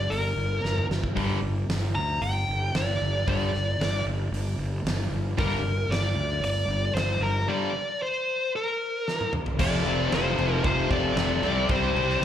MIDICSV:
0, 0, Header, 1, 7, 480
1, 0, Start_track
1, 0, Key_signature, -2, "minor"
1, 0, Tempo, 526316
1, 1066, Time_signature, 4, 2, 24, 8
1, 11169, End_track
2, 0, Start_track
2, 0, Title_t, "Lead electric guitar"
2, 0, Program_c, 0, 29
2, 0, Note_on_c, 0, 74, 90
2, 93, Note_on_c, 0, 70, 79
2, 115, Note_off_c, 0, 74, 0
2, 784, Note_off_c, 0, 70, 0
2, 1780, Note_on_c, 0, 82, 94
2, 2022, Note_on_c, 0, 79, 102
2, 2031, Note_off_c, 0, 82, 0
2, 2519, Note_on_c, 0, 74, 80
2, 2521, Note_off_c, 0, 79, 0
2, 2988, Note_off_c, 0, 74, 0
2, 2999, Note_on_c, 0, 74, 79
2, 3679, Note_off_c, 0, 74, 0
2, 4917, Note_on_c, 0, 70, 99
2, 5389, Note_on_c, 0, 74, 99
2, 5409, Note_off_c, 0, 70, 0
2, 5868, Note_off_c, 0, 74, 0
2, 5879, Note_on_c, 0, 74, 114
2, 6323, Note_off_c, 0, 74, 0
2, 6336, Note_on_c, 0, 72, 91
2, 6586, Note_on_c, 0, 70, 81
2, 6592, Note_off_c, 0, 72, 0
2, 6825, Note_on_c, 0, 74, 101
2, 6837, Note_off_c, 0, 70, 0
2, 7314, Note_off_c, 0, 74, 0
2, 7317, Note_on_c, 0, 72, 86
2, 7761, Note_off_c, 0, 72, 0
2, 7807, Note_on_c, 0, 70, 82
2, 8482, Note_off_c, 0, 70, 0
2, 8765, Note_on_c, 0, 74, 122
2, 9248, Note_off_c, 0, 74, 0
2, 9251, Note_on_c, 0, 72, 91
2, 9687, Note_off_c, 0, 72, 0
2, 9712, Note_on_c, 0, 72, 100
2, 9951, Note_off_c, 0, 72, 0
2, 9954, Note_on_c, 0, 74, 105
2, 10672, Note_off_c, 0, 74, 0
2, 10676, Note_on_c, 0, 72, 89
2, 11169, Note_off_c, 0, 72, 0
2, 11169, End_track
3, 0, Start_track
3, 0, Title_t, "Lead electric guitar"
3, 0, Program_c, 1, 29
3, 8772, Note_on_c, 1, 69, 89
3, 9208, Note_off_c, 1, 69, 0
3, 9253, Note_on_c, 1, 65, 86
3, 9688, Note_off_c, 1, 65, 0
3, 9731, Note_on_c, 1, 65, 83
3, 9943, Note_off_c, 1, 65, 0
3, 9959, Note_on_c, 1, 69, 91
3, 10636, Note_off_c, 1, 69, 0
3, 10680, Note_on_c, 1, 67, 73
3, 11169, Note_off_c, 1, 67, 0
3, 11169, End_track
4, 0, Start_track
4, 0, Title_t, "Distorted electric guitar"
4, 0, Program_c, 2, 30
4, 1054, Note_on_c, 2, 43, 98
4, 1063, Note_on_c, 2, 50, 93
4, 1063, Note_on_c, 2, 55, 106
4, 1252, Note_off_c, 2, 43, 0
4, 1257, Note_off_c, 2, 50, 0
4, 1257, Note_off_c, 2, 55, 0
4, 2991, Note_on_c, 2, 43, 88
4, 2997, Note_on_c, 2, 50, 92
4, 3000, Note_on_c, 2, 55, 107
4, 3183, Note_off_c, 2, 43, 0
4, 3186, Note_off_c, 2, 50, 0
4, 3187, Note_off_c, 2, 55, 0
4, 4905, Note_on_c, 2, 43, 90
4, 4910, Note_on_c, 2, 50, 99
4, 4918, Note_on_c, 2, 55, 116
4, 5101, Note_off_c, 2, 43, 0
4, 5103, Note_off_c, 2, 50, 0
4, 5107, Note_off_c, 2, 55, 0
4, 6828, Note_on_c, 2, 43, 90
4, 6834, Note_on_c, 2, 50, 97
4, 6842, Note_on_c, 2, 55, 97
4, 7022, Note_off_c, 2, 43, 0
4, 7025, Note_off_c, 2, 50, 0
4, 7029, Note_off_c, 2, 55, 0
4, 8744, Note_on_c, 2, 41, 94
4, 8752, Note_on_c, 2, 48, 107
4, 8759, Note_on_c, 2, 53, 105
4, 8969, Note_off_c, 2, 41, 0
4, 8976, Note_off_c, 2, 48, 0
4, 8980, Note_on_c, 2, 41, 82
4, 8987, Note_on_c, 2, 48, 93
4, 8988, Note_off_c, 2, 53, 0
4, 8999, Note_on_c, 2, 53, 92
4, 9220, Note_off_c, 2, 41, 0
4, 9224, Note_off_c, 2, 48, 0
4, 9230, Note_off_c, 2, 53, 0
4, 9231, Note_on_c, 2, 41, 93
4, 9235, Note_on_c, 2, 48, 94
4, 9241, Note_on_c, 2, 53, 102
4, 9458, Note_off_c, 2, 41, 0
4, 9469, Note_on_c, 2, 41, 87
4, 9472, Note_off_c, 2, 48, 0
4, 9477, Note_off_c, 2, 53, 0
4, 9483, Note_on_c, 2, 48, 93
4, 9488, Note_on_c, 2, 53, 99
4, 9702, Note_off_c, 2, 41, 0
4, 9706, Note_off_c, 2, 48, 0
4, 9713, Note_off_c, 2, 53, 0
4, 9713, Note_on_c, 2, 41, 104
4, 9717, Note_on_c, 2, 48, 102
4, 9724, Note_on_c, 2, 53, 106
4, 9934, Note_off_c, 2, 41, 0
4, 9945, Note_on_c, 2, 41, 88
4, 9946, Note_off_c, 2, 48, 0
4, 9946, Note_off_c, 2, 53, 0
4, 9956, Note_on_c, 2, 48, 95
4, 9957, Note_on_c, 2, 53, 91
4, 10173, Note_off_c, 2, 41, 0
4, 10180, Note_off_c, 2, 48, 0
4, 10184, Note_off_c, 2, 53, 0
4, 10184, Note_on_c, 2, 41, 90
4, 10191, Note_on_c, 2, 48, 92
4, 10195, Note_on_c, 2, 53, 97
4, 10411, Note_off_c, 2, 41, 0
4, 10411, Note_off_c, 2, 48, 0
4, 10416, Note_off_c, 2, 53, 0
4, 10422, Note_on_c, 2, 48, 105
4, 10429, Note_on_c, 2, 55, 114
4, 10435, Note_on_c, 2, 60, 112
4, 10656, Note_off_c, 2, 48, 0
4, 10664, Note_off_c, 2, 55, 0
4, 10666, Note_on_c, 2, 48, 96
4, 10671, Note_off_c, 2, 60, 0
4, 10675, Note_on_c, 2, 55, 108
4, 10682, Note_on_c, 2, 60, 116
4, 10898, Note_off_c, 2, 48, 0
4, 10900, Note_off_c, 2, 55, 0
4, 10908, Note_off_c, 2, 60, 0
4, 10909, Note_on_c, 2, 48, 94
4, 10911, Note_on_c, 2, 55, 103
4, 10919, Note_on_c, 2, 60, 97
4, 11133, Note_off_c, 2, 48, 0
4, 11139, Note_off_c, 2, 55, 0
4, 11144, Note_off_c, 2, 60, 0
4, 11169, End_track
5, 0, Start_track
5, 0, Title_t, "Overdriven electric guitar"
5, 0, Program_c, 3, 29
5, 11137, Note_on_c, 3, 48, 82
5, 11169, Note_off_c, 3, 48, 0
5, 11169, End_track
6, 0, Start_track
6, 0, Title_t, "Fingered electric bass"
6, 0, Program_c, 4, 33
6, 102, Note_on_c, 4, 31, 90
6, 314, Note_off_c, 4, 31, 0
6, 335, Note_on_c, 4, 31, 88
6, 550, Note_off_c, 4, 31, 0
6, 576, Note_on_c, 4, 31, 77
6, 792, Note_off_c, 4, 31, 0
6, 817, Note_on_c, 4, 31, 83
6, 1032, Note_off_c, 4, 31, 0
6, 1061, Note_on_c, 4, 31, 94
6, 1275, Note_off_c, 4, 31, 0
6, 1295, Note_on_c, 4, 31, 86
6, 1512, Note_off_c, 4, 31, 0
6, 1540, Note_on_c, 4, 31, 90
6, 1754, Note_off_c, 4, 31, 0
6, 1778, Note_on_c, 4, 38, 89
6, 1994, Note_off_c, 4, 38, 0
6, 2021, Note_on_c, 4, 31, 98
6, 2236, Note_off_c, 4, 31, 0
6, 2264, Note_on_c, 4, 31, 90
6, 2477, Note_off_c, 4, 31, 0
6, 2504, Note_on_c, 4, 31, 84
6, 2718, Note_off_c, 4, 31, 0
6, 2751, Note_on_c, 4, 31, 85
6, 2962, Note_off_c, 4, 31, 0
6, 2988, Note_on_c, 4, 31, 93
6, 3200, Note_off_c, 4, 31, 0
6, 3225, Note_on_c, 4, 31, 92
6, 3438, Note_off_c, 4, 31, 0
6, 3457, Note_on_c, 4, 31, 91
6, 3674, Note_off_c, 4, 31, 0
6, 3701, Note_on_c, 4, 31, 86
6, 3916, Note_off_c, 4, 31, 0
6, 3938, Note_on_c, 4, 31, 90
6, 4155, Note_off_c, 4, 31, 0
6, 4179, Note_on_c, 4, 31, 84
6, 4396, Note_off_c, 4, 31, 0
6, 4419, Note_on_c, 4, 31, 88
6, 4636, Note_off_c, 4, 31, 0
6, 4659, Note_on_c, 4, 31, 83
6, 4876, Note_off_c, 4, 31, 0
6, 4912, Note_on_c, 4, 31, 98
6, 5121, Note_off_c, 4, 31, 0
6, 5126, Note_on_c, 4, 31, 86
6, 5349, Note_off_c, 4, 31, 0
6, 5371, Note_on_c, 4, 31, 92
6, 5592, Note_off_c, 4, 31, 0
6, 5612, Note_on_c, 4, 38, 90
6, 5832, Note_off_c, 4, 38, 0
6, 5838, Note_on_c, 4, 31, 94
6, 6064, Note_off_c, 4, 31, 0
6, 6090, Note_on_c, 4, 31, 84
6, 6311, Note_off_c, 4, 31, 0
6, 6336, Note_on_c, 4, 31, 82
6, 6554, Note_off_c, 4, 31, 0
6, 6570, Note_on_c, 4, 31, 88
6, 6791, Note_off_c, 4, 31, 0
6, 8752, Note_on_c, 4, 29, 89
6, 8980, Note_off_c, 4, 29, 0
6, 8987, Note_on_c, 4, 29, 90
6, 9217, Note_off_c, 4, 29, 0
6, 9227, Note_on_c, 4, 29, 91
6, 9457, Note_off_c, 4, 29, 0
6, 9473, Note_on_c, 4, 29, 91
6, 9700, Note_off_c, 4, 29, 0
6, 9709, Note_on_c, 4, 29, 97
6, 9938, Note_off_c, 4, 29, 0
6, 9946, Note_on_c, 4, 29, 86
6, 10172, Note_off_c, 4, 29, 0
6, 10177, Note_on_c, 4, 29, 97
6, 10411, Note_off_c, 4, 29, 0
6, 10417, Note_on_c, 4, 36, 88
6, 10651, Note_off_c, 4, 36, 0
6, 10663, Note_on_c, 4, 36, 93
6, 10894, Note_off_c, 4, 36, 0
6, 10902, Note_on_c, 4, 36, 87
6, 11127, Note_off_c, 4, 36, 0
6, 11132, Note_on_c, 4, 36, 92
6, 11169, Note_off_c, 4, 36, 0
6, 11169, End_track
7, 0, Start_track
7, 0, Title_t, "Drums"
7, 106, Note_on_c, 9, 46, 54
7, 197, Note_off_c, 9, 46, 0
7, 590, Note_on_c, 9, 38, 63
7, 682, Note_off_c, 9, 38, 0
7, 711, Note_on_c, 9, 47, 62
7, 802, Note_off_c, 9, 47, 0
7, 831, Note_on_c, 9, 38, 86
7, 922, Note_off_c, 9, 38, 0
7, 944, Note_on_c, 9, 36, 77
7, 1035, Note_off_c, 9, 36, 0
7, 1062, Note_on_c, 9, 46, 53
7, 1066, Note_on_c, 9, 36, 95
7, 1153, Note_off_c, 9, 46, 0
7, 1157, Note_off_c, 9, 36, 0
7, 1545, Note_on_c, 9, 46, 56
7, 1549, Note_on_c, 9, 38, 114
7, 1637, Note_off_c, 9, 46, 0
7, 1640, Note_off_c, 9, 38, 0
7, 2022, Note_on_c, 9, 46, 51
7, 2113, Note_off_c, 9, 46, 0
7, 2504, Note_on_c, 9, 46, 55
7, 2508, Note_on_c, 9, 38, 113
7, 2595, Note_off_c, 9, 46, 0
7, 2599, Note_off_c, 9, 38, 0
7, 2985, Note_on_c, 9, 46, 57
7, 2990, Note_on_c, 9, 36, 114
7, 3077, Note_off_c, 9, 46, 0
7, 3081, Note_off_c, 9, 36, 0
7, 3231, Note_on_c, 9, 38, 33
7, 3323, Note_off_c, 9, 38, 0
7, 3475, Note_on_c, 9, 46, 58
7, 3478, Note_on_c, 9, 38, 107
7, 3566, Note_off_c, 9, 46, 0
7, 3570, Note_off_c, 9, 38, 0
7, 3955, Note_on_c, 9, 46, 58
7, 4046, Note_off_c, 9, 46, 0
7, 4436, Note_on_c, 9, 46, 63
7, 4439, Note_on_c, 9, 38, 112
7, 4527, Note_off_c, 9, 46, 0
7, 4531, Note_off_c, 9, 38, 0
7, 4912, Note_on_c, 9, 36, 110
7, 4914, Note_on_c, 9, 46, 61
7, 5003, Note_off_c, 9, 36, 0
7, 5005, Note_off_c, 9, 46, 0
7, 5399, Note_on_c, 9, 46, 57
7, 5402, Note_on_c, 9, 38, 105
7, 5490, Note_off_c, 9, 46, 0
7, 5493, Note_off_c, 9, 38, 0
7, 5867, Note_on_c, 9, 46, 49
7, 5958, Note_off_c, 9, 46, 0
7, 6352, Note_on_c, 9, 46, 55
7, 6355, Note_on_c, 9, 38, 121
7, 6443, Note_off_c, 9, 46, 0
7, 6446, Note_off_c, 9, 38, 0
7, 8279, Note_on_c, 9, 38, 66
7, 8370, Note_off_c, 9, 38, 0
7, 8397, Note_on_c, 9, 48, 63
7, 8488, Note_off_c, 9, 48, 0
7, 8507, Note_on_c, 9, 45, 89
7, 8598, Note_off_c, 9, 45, 0
7, 8630, Note_on_c, 9, 43, 84
7, 8721, Note_off_c, 9, 43, 0
7, 8750, Note_on_c, 9, 36, 120
7, 8754, Note_on_c, 9, 49, 127
7, 8754, Note_on_c, 9, 57, 84
7, 8841, Note_off_c, 9, 36, 0
7, 8845, Note_off_c, 9, 49, 0
7, 8845, Note_off_c, 9, 57, 0
7, 8991, Note_on_c, 9, 57, 58
7, 9082, Note_off_c, 9, 57, 0
7, 9231, Note_on_c, 9, 57, 82
7, 9234, Note_on_c, 9, 38, 107
7, 9322, Note_off_c, 9, 57, 0
7, 9325, Note_off_c, 9, 38, 0
7, 9470, Note_on_c, 9, 57, 66
7, 9561, Note_off_c, 9, 57, 0
7, 9708, Note_on_c, 9, 36, 109
7, 9709, Note_on_c, 9, 57, 78
7, 9799, Note_off_c, 9, 36, 0
7, 9800, Note_off_c, 9, 57, 0
7, 9947, Note_on_c, 9, 36, 88
7, 9949, Note_on_c, 9, 57, 61
7, 10038, Note_off_c, 9, 36, 0
7, 10040, Note_off_c, 9, 57, 0
7, 10184, Note_on_c, 9, 57, 80
7, 10187, Note_on_c, 9, 38, 121
7, 10275, Note_off_c, 9, 57, 0
7, 10279, Note_off_c, 9, 38, 0
7, 10425, Note_on_c, 9, 57, 63
7, 10428, Note_on_c, 9, 38, 34
7, 10516, Note_off_c, 9, 57, 0
7, 10519, Note_off_c, 9, 38, 0
7, 10662, Note_on_c, 9, 57, 86
7, 10665, Note_on_c, 9, 36, 116
7, 10753, Note_off_c, 9, 57, 0
7, 10756, Note_off_c, 9, 36, 0
7, 10910, Note_on_c, 9, 57, 63
7, 11001, Note_off_c, 9, 57, 0
7, 11031, Note_on_c, 9, 38, 30
7, 11122, Note_off_c, 9, 38, 0
7, 11169, End_track
0, 0, End_of_file